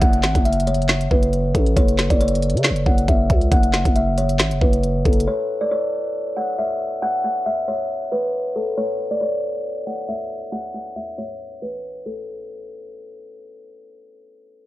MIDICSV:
0, 0, Header, 1, 5, 480
1, 0, Start_track
1, 0, Key_signature, 3, "minor"
1, 0, Tempo, 437956
1, 16, Time_signature, 4, 2, 24, 8
1, 16075, End_track
2, 0, Start_track
2, 0, Title_t, "Kalimba"
2, 0, Program_c, 0, 108
2, 17, Note_on_c, 0, 78, 105
2, 242, Note_off_c, 0, 78, 0
2, 258, Note_on_c, 0, 78, 76
2, 482, Note_off_c, 0, 78, 0
2, 497, Note_on_c, 0, 76, 79
2, 722, Note_off_c, 0, 76, 0
2, 738, Note_on_c, 0, 73, 81
2, 1188, Note_off_c, 0, 73, 0
2, 1219, Note_on_c, 0, 71, 88
2, 1669, Note_off_c, 0, 71, 0
2, 1697, Note_on_c, 0, 69, 72
2, 1922, Note_off_c, 0, 69, 0
2, 1937, Note_on_c, 0, 73, 99
2, 2282, Note_off_c, 0, 73, 0
2, 2304, Note_on_c, 0, 74, 77
2, 2410, Note_off_c, 0, 74, 0
2, 2418, Note_on_c, 0, 73, 85
2, 2869, Note_off_c, 0, 73, 0
2, 3138, Note_on_c, 0, 78, 71
2, 3363, Note_off_c, 0, 78, 0
2, 3378, Note_on_c, 0, 76, 76
2, 3602, Note_off_c, 0, 76, 0
2, 3857, Note_on_c, 0, 78, 107
2, 4082, Note_off_c, 0, 78, 0
2, 4098, Note_on_c, 0, 78, 75
2, 4323, Note_off_c, 0, 78, 0
2, 4339, Note_on_c, 0, 76, 78
2, 4563, Note_off_c, 0, 76, 0
2, 4578, Note_on_c, 0, 73, 78
2, 5028, Note_off_c, 0, 73, 0
2, 5058, Note_on_c, 0, 71, 73
2, 5508, Note_off_c, 0, 71, 0
2, 5539, Note_on_c, 0, 69, 71
2, 5763, Note_off_c, 0, 69, 0
2, 5778, Note_on_c, 0, 73, 96
2, 6123, Note_off_c, 0, 73, 0
2, 6144, Note_on_c, 0, 74, 80
2, 6250, Note_off_c, 0, 74, 0
2, 6257, Note_on_c, 0, 73, 89
2, 6708, Note_off_c, 0, 73, 0
2, 6978, Note_on_c, 0, 78, 79
2, 7202, Note_off_c, 0, 78, 0
2, 7217, Note_on_c, 0, 76, 73
2, 7442, Note_off_c, 0, 76, 0
2, 7697, Note_on_c, 0, 78, 103
2, 7922, Note_off_c, 0, 78, 0
2, 7937, Note_on_c, 0, 78, 75
2, 8162, Note_off_c, 0, 78, 0
2, 8177, Note_on_c, 0, 76, 78
2, 8402, Note_off_c, 0, 76, 0
2, 8416, Note_on_c, 0, 73, 76
2, 8868, Note_off_c, 0, 73, 0
2, 8897, Note_on_c, 0, 71, 83
2, 9348, Note_off_c, 0, 71, 0
2, 9377, Note_on_c, 0, 69, 69
2, 9602, Note_off_c, 0, 69, 0
2, 9615, Note_on_c, 0, 73, 97
2, 9961, Note_off_c, 0, 73, 0
2, 9983, Note_on_c, 0, 74, 77
2, 10089, Note_off_c, 0, 74, 0
2, 10096, Note_on_c, 0, 73, 83
2, 10547, Note_off_c, 0, 73, 0
2, 10815, Note_on_c, 0, 78, 69
2, 11041, Note_off_c, 0, 78, 0
2, 11055, Note_on_c, 0, 76, 75
2, 11281, Note_off_c, 0, 76, 0
2, 11535, Note_on_c, 0, 78, 104
2, 11761, Note_off_c, 0, 78, 0
2, 11775, Note_on_c, 0, 78, 76
2, 12001, Note_off_c, 0, 78, 0
2, 12016, Note_on_c, 0, 76, 79
2, 12242, Note_off_c, 0, 76, 0
2, 12257, Note_on_c, 0, 73, 77
2, 12708, Note_off_c, 0, 73, 0
2, 12737, Note_on_c, 0, 71, 75
2, 13188, Note_off_c, 0, 71, 0
2, 13218, Note_on_c, 0, 69, 73
2, 13443, Note_off_c, 0, 69, 0
2, 16075, End_track
3, 0, Start_track
3, 0, Title_t, "808-style bass"
3, 0, Program_c, 1, 38
3, 17, Note_on_c, 1, 30, 107
3, 258, Note_on_c, 1, 32, 97
3, 274, Note_off_c, 1, 30, 0
3, 378, Note_off_c, 1, 32, 0
3, 385, Note_on_c, 1, 30, 104
3, 1184, Note_off_c, 1, 30, 0
3, 1217, Note_on_c, 1, 30, 97
3, 1678, Note_off_c, 1, 30, 0
3, 1697, Note_on_c, 1, 33, 100
3, 1927, Note_off_c, 1, 33, 0
3, 1938, Note_on_c, 1, 30, 107
3, 2290, Note_off_c, 1, 30, 0
3, 2305, Note_on_c, 1, 30, 106
3, 2785, Note_on_c, 1, 49, 98
3, 2802, Note_off_c, 1, 30, 0
3, 2961, Note_on_c, 1, 30, 100
3, 2978, Note_off_c, 1, 49, 0
3, 3128, Note_off_c, 1, 30, 0
3, 3137, Note_on_c, 1, 30, 101
3, 3367, Note_off_c, 1, 30, 0
3, 3378, Note_on_c, 1, 30, 106
3, 3608, Note_off_c, 1, 30, 0
3, 3617, Note_on_c, 1, 37, 101
3, 3847, Note_off_c, 1, 37, 0
3, 3857, Note_on_c, 1, 30, 112
3, 4209, Note_off_c, 1, 30, 0
3, 4224, Note_on_c, 1, 30, 107
3, 4817, Note_on_c, 1, 32, 97
3, 4834, Note_off_c, 1, 30, 0
3, 4944, Note_on_c, 1, 30, 96
3, 4961, Note_off_c, 1, 32, 0
3, 5051, Note_off_c, 1, 30, 0
3, 5056, Note_on_c, 1, 30, 100
3, 5517, Note_off_c, 1, 30, 0
3, 5536, Note_on_c, 1, 30, 100
3, 5767, Note_off_c, 1, 30, 0
3, 16075, End_track
4, 0, Start_track
4, 0, Title_t, "Downlifter"
4, 0, Program_c, 2, 103
4, 0, Note_on_c, 2, 60, 84
4, 1937, Note_off_c, 2, 60, 0
4, 16075, End_track
5, 0, Start_track
5, 0, Title_t, "Drums"
5, 17, Note_on_c, 9, 36, 114
5, 17, Note_on_c, 9, 42, 88
5, 126, Note_off_c, 9, 36, 0
5, 126, Note_off_c, 9, 42, 0
5, 144, Note_on_c, 9, 42, 54
5, 253, Note_on_c, 9, 39, 70
5, 254, Note_off_c, 9, 42, 0
5, 257, Note_on_c, 9, 38, 88
5, 257, Note_on_c, 9, 42, 78
5, 362, Note_off_c, 9, 39, 0
5, 367, Note_off_c, 9, 38, 0
5, 367, Note_off_c, 9, 42, 0
5, 385, Note_on_c, 9, 36, 79
5, 385, Note_on_c, 9, 42, 60
5, 494, Note_off_c, 9, 36, 0
5, 495, Note_off_c, 9, 42, 0
5, 498, Note_on_c, 9, 42, 72
5, 577, Note_off_c, 9, 42, 0
5, 577, Note_on_c, 9, 42, 67
5, 657, Note_off_c, 9, 42, 0
5, 657, Note_on_c, 9, 42, 62
5, 737, Note_off_c, 9, 42, 0
5, 737, Note_on_c, 9, 42, 57
5, 817, Note_off_c, 9, 42, 0
5, 817, Note_on_c, 9, 42, 51
5, 897, Note_off_c, 9, 42, 0
5, 897, Note_on_c, 9, 42, 42
5, 972, Note_on_c, 9, 39, 86
5, 977, Note_off_c, 9, 42, 0
5, 977, Note_on_c, 9, 38, 113
5, 977, Note_on_c, 9, 42, 79
5, 1082, Note_off_c, 9, 39, 0
5, 1087, Note_off_c, 9, 38, 0
5, 1087, Note_off_c, 9, 42, 0
5, 1105, Note_on_c, 9, 42, 60
5, 1215, Note_off_c, 9, 42, 0
5, 1217, Note_on_c, 9, 36, 99
5, 1327, Note_off_c, 9, 36, 0
5, 1345, Note_on_c, 9, 42, 58
5, 1454, Note_off_c, 9, 42, 0
5, 1458, Note_on_c, 9, 42, 61
5, 1568, Note_off_c, 9, 42, 0
5, 1697, Note_on_c, 9, 36, 92
5, 1698, Note_on_c, 9, 42, 62
5, 1807, Note_off_c, 9, 36, 0
5, 1807, Note_off_c, 9, 42, 0
5, 1826, Note_on_c, 9, 42, 38
5, 1936, Note_off_c, 9, 42, 0
5, 1938, Note_on_c, 9, 36, 110
5, 1938, Note_on_c, 9, 42, 89
5, 2047, Note_off_c, 9, 36, 0
5, 2048, Note_off_c, 9, 42, 0
5, 2066, Note_on_c, 9, 42, 55
5, 2174, Note_on_c, 9, 39, 70
5, 2176, Note_off_c, 9, 42, 0
5, 2178, Note_on_c, 9, 42, 80
5, 2179, Note_on_c, 9, 38, 86
5, 2283, Note_off_c, 9, 39, 0
5, 2288, Note_off_c, 9, 38, 0
5, 2288, Note_off_c, 9, 42, 0
5, 2305, Note_on_c, 9, 36, 80
5, 2305, Note_on_c, 9, 42, 58
5, 2415, Note_off_c, 9, 36, 0
5, 2415, Note_off_c, 9, 42, 0
5, 2419, Note_on_c, 9, 42, 71
5, 2499, Note_off_c, 9, 42, 0
5, 2499, Note_on_c, 9, 42, 65
5, 2579, Note_off_c, 9, 42, 0
5, 2579, Note_on_c, 9, 42, 64
5, 2658, Note_off_c, 9, 42, 0
5, 2658, Note_on_c, 9, 42, 55
5, 2738, Note_off_c, 9, 42, 0
5, 2738, Note_on_c, 9, 42, 50
5, 2818, Note_off_c, 9, 42, 0
5, 2818, Note_on_c, 9, 42, 44
5, 2893, Note_on_c, 9, 39, 90
5, 2898, Note_off_c, 9, 42, 0
5, 2898, Note_on_c, 9, 38, 116
5, 2898, Note_on_c, 9, 42, 77
5, 3003, Note_off_c, 9, 39, 0
5, 3008, Note_off_c, 9, 38, 0
5, 3008, Note_off_c, 9, 42, 0
5, 3026, Note_on_c, 9, 42, 59
5, 3135, Note_off_c, 9, 42, 0
5, 3137, Note_on_c, 9, 36, 101
5, 3247, Note_off_c, 9, 36, 0
5, 3266, Note_on_c, 9, 42, 58
5, 3375, Note_off_c, 9, 42, 0
5, 3378, Note_on_c, 9, 36, 91
5, 3379, Note_on_c, 9, 42, 61
5, 3487, Note_off_c, 9, 36, 0
5, 3488, Note_off_c, 9, 42, 0
5, 3617, Note_on_c, 9, 36, 92
5, 3617, Note_on_c, 9, 42, 62
5, 3727, Note_off_c, 9, 36, 0
5, 3727, Note_off_c, 9, 42, 0
5, 3744, Note_on_c, 9, 42, 38
5, 3854, Note_off_c, 9, 42, 0
5, 3857, Note_on_c, 9, 36, 112
5, 3857, Note_on_c, 9, 42, 90
5, 3966, Note_off_c, 9, 42, 0
5, 3967, Note_off_c, 9, 36, 0
5, 3984, Note_on_c, 9, 42, 53
5, 4092, Note_on_c, 9, 39, 66
5, 4094, Note_off_c, 9, 42, 0
5, 4096, Note_on_c, 9, 42, 81
5, 4097, Note_on_c, 9, 38, 83
5, 4201, Note_off_c, 9, 39, 0
5, 4206, Note_off_c, 9, 38, 0
5, 4206, Note_off_c, 9, 42, 0
5, 4224, Note_on_c, 9, 36, 82
5, 4224, Note_on_c, 9, 42, 58
5, 4333, Note_off_c, 9, 42, 0
5, 4334, Note_off_c, 9, 36, 0
5, 4336, Note_on_c, 9, 42, 70
5, 4446, Note_off_c, 9, 42, 0
5, 4577, Note_on_c, 9, 42, 79
5, 4687, Note_off_c, 9, 42, 0
5, 4704, Note_on_c, 9, 42, 61
5, 4812, Note_on_c, 9, 39, 90
5, 4814, Note_off_c, 9, 42, 0
5, 4817, Note_on_c, 9, 38, 108
5, 4817, Note_on_c, 9, 42, 76
5, 4921, Note_off_c, 9, 39, 0
5, 4926, Note_off_c, 9, 38, 0
5, 4926, Note_off_c, 9, 42, 0
5, 4944, Note_on_c, 9, 42, 60
5, 5054, Note_off_c, 9, 42, 0
5, 5056, Note_on_c, 9, 36, 101
5, 5166, Note_off_c, 9, 36, 0
5, 5184, Note_on_c, 9, 42, 58
5, 5294, Note_off_c, 9, 42, 0
5, 5298, Note_on_c, 9, 42, 62
5, 5407, Note_off_c, 9, 42, 0
5, 5537, Note_on_c, 9, 36, 95
5, 5537, Note_on_c, 9, 42, 39
5, 5618, Note_off_c, 9, 42, 0
5, 5618, Note_on_c, 9, 42, 51
5, 5646, Note_off_c, 9, 36, 0
5, 5698, Note_off_c, 9, 42, 0
5, 5698, Note_on_c, 9, 42, 67
5, 5807, Note_off_c, 9, 42, 0
5, 16075, End_track
0, 0, End_of_file